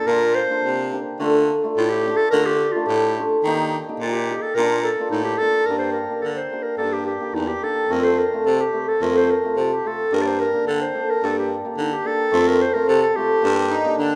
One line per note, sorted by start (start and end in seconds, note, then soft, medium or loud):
0.07 0.41 A#2 medium
0.07 0.29 A#3 medium
0.07 0.29 D4 medium
0.07 0.29 F4 medium
0.07 0.36 A#4 loud
0.35 0.92 C5 loud
0.50 0.71 A#3 medium
0.50 0.71 D4 medium
0.50 0.72 F4 medium
0.64 0.98 C3 medium
0.92 1.06 A#3 soft
0.92 1.06 D4 medium
0.92 1.07 G4 medium
1.19 1.53 D3 medium
1.19 1.41 A3 medium
1.19 1.41 D4 medium
1.19 1.41 F4 medium
1.64 1.84 A3 medium
1.64 1.84 D4 soft
1.64 1.85 F4 medium
1.77 2.10 A2 medium
1.77 1.85 D#4 medium
1.77 1.81 F4 medium
1.84 1.91 F4 medium
1.89 2.18 G4 medium
2.06 2.19 A3 soft
2.06 2.19 D4 medium
2.06 2.20 F4 medium
2.16 2.30 A4 medium
2.31 2.66 D3 medium
2.31 2.53 A3 medium
2.31 2.54 D4 medium
2.31 2.54 F4 medium
2.31 2.47 A#4 loud
2.45 2.74 G4 medium
2.73 2.96 A3 medium
2.73 2.96 D4 soft
2.73 2.88 F4 medium
2.73 2.96 F4 medium
2.87 3.22 A2 medium
2.87 3.29 G4 medium
3.18 3.31 A3 medium
3.18 3.32 D4 medium
3.18 3.32 F4 medium
3.44 3.77 D#3 loud
3.44 3.66 A#3 medium
3.44 3.66 D#4 medium
3.48 3.67 G4 loud
3.89 4.08 A#3 medium
3.89 4.08 D#4 medium
3.89 4.08 G4 medium
4.00 4.33 A#2 medium
4.00 4.15 F4 medium
4.13 4.43 G4 medium
4.29 4.42 A#3 medium
4.29 4.43 D#4 medium
4.29 4.43 G4 medium
4.42 4.56 A4 medium
4.55 4.90 A#2 loud
4.55 4.77 A#3 medium
4.55 4.78 D4 medium
4.55 4.78 F4 medium
4.55 4.83 A#4 loud
4.84 5.10 A4 medium
5.00 5.20 A#3 medium
5.00 5.20 D4 soft
5.00 5.20 F4 medium
5.11 5.37 A2 medium
5.11 5.23 D#4 medium
5.24 5.39 G4 medium
5.37 5.54 A#3 medium
5.37 5.67 A4 loud
5.42 5.55 D4 soft
5.42 5.55 F4 medium
5.66 6.01 G2 medium
5.66 5.89 A#3 medium
5.66 5.78 A#4 medium
5.70 5.90 D4 medium
5.70 5.90 G4 medium
5.79 5.92 C5 medium
5.92 6.23 A#4 medium
6.10 6.30 A#3 soft
6.10 6.31 D4 soft
6.10 6.31 G4 soft
6.21 6.40 D3 medium
6.21 6.26 A4 medium
6.21 6.29 A#4 medium
6.28 6.37 A4 medium
6.35 6.64 C5 medium
6.52 6.66 A#3 medium
6.52 6.66 D4 soft
6.52 6.66 G4 medium
6.63 6.77 A#4 medium
6.77 7.13 G2 medium
6.77 6.99 A#3 medium
6.77 7.00 D4 medium
6.77 7.00 G4 medium
6.77 6.94 A4 medium
6.93 7.06 G4 medium
7.06 7.36 G4 medium
7.20 7.42 A#3 medium
7.20 7.42 D4 soft
7.20 7.42 G4 medium
7.34 7.51 E2 medium
7.34 7.49 D#4 medium
7.48 7.65 G4 medium
7.62 7.76 A#3 medium
7.62 7.77 D4 soft
7.62 7.77 G4 medium
7.62 7.93 A4 medium
7.89 8.23 F2 medium
7.89 8.11 A3 medium
7.89 8.12 C4 medium
7.89 8.12 F4 medium
7.89 8.06 A#4 medium
8.04 8.20 C5 medium
8.19 8.48 A#4 medium
8.33 8.53 A3 medium
8.33 8.54 C4 soft
8.33 8.54 F4 medium
8.46 8.63 C3 medium
8.46 8.62 A4 medium
8.60 8.90 G4 medium
8.73 8.87 A3 medium
8.73 8.88 C4 soft
8.73 8.88 G4 medium
8.88 9.04 A4 medium
9.01 9.35 F2 medium
9.01 9.22 A3 medium
9.01 9.23 C4 medium
9.01 9.23 F4 medium
9.01 9.19 A#4 medium
9.17 9.32 C5 medium
9.31 9.58 A#4 medium
9.44 9.64 A3 soft
9.44 9.65 C4 soft
9.44 9.65 F4 medium
9.57 9.73 C3 medium
9.57 9.75 F4 medium
9.73 9.88 G4 medium
9.85 9.99 A3 soft
9.85 9.99 C4 soft
9.85 10.00 F4 medium
9.85 10.16 A4 medium
10.12 10.46 G2 medium
10.12 10.33 A#3 medium
10.12 10.33 D4 medium
10.12 10.34 G4 medium
10.12 10.23 A#4 medium
10.21 10.28 D5 medium
10.26 10.41 C5 medium
10.40 10.67 A#4 medium
10.54 10.75 A#3 soft
10.54 10.75 D4 soft
10.54 10.75 G4 medium
10.67 10.84 D3 medium
10.67 10.83 A4 medium
10.81 11.12 C5 medium
10.95 11.09 A#3 medium
10.95 11.09 D4 soft
10.95 11.09 A4 medium
11.10 11.26 A#4 medium
11.23 11.56 G2 medium
11.23 11.44 A#3 medium
11.23 11.44 D4 medium
11.23 11.45 G4 medium
11.23 11.38 A4 loud
11.39 11.51 G4 medium
11.65 11.85 A#3 medium
11.65 11.86 D4 soft
11.65 11.86 G4 medium
11.78 11.94 D3 medium
11.78 11.91 D#4 medium
11.92 12.08 G4 medium
12.04 12.19 A#3 medium
12.04 12.19 D4 medium
12.04 12.20 G4 medium
12.04 12.49 A4 loud
12.32 12.66 F2 loud
12.32 12.53 A3 medium
12.32 12.53 C4 medium
12.32 12.54 F4 medium
12.48 12.63 A#4 medium
12.61 12.75 C5 medium
12.74 12.95 A3 medium
12.74 12.96 C4 soft
12.74 12.96 F4 medium
12.74 12.88 A#4 medium
12.88 13.05 C3 medium
12.88 13.01 A4 medium
13.02 13.17 A4 medium
13.15 13.30 A3 medium
13.15 13.30 C4 medium
13.15 13.31 F4 medium
13.15 13.98 G4 medium
13.42 13.77 G2 loud
13.42 13.64 A#3 medium
13.42 13.64 D4 medium
13.42 13.64 G4 medium
13.70 13.96 D#4 loud
13.84 14.05 A#3 medium
13.84 14.06 D4 medium
13.84 14.06 G4 medium
13.98 14.15 D3 medium
13.98 14.15 D4 loud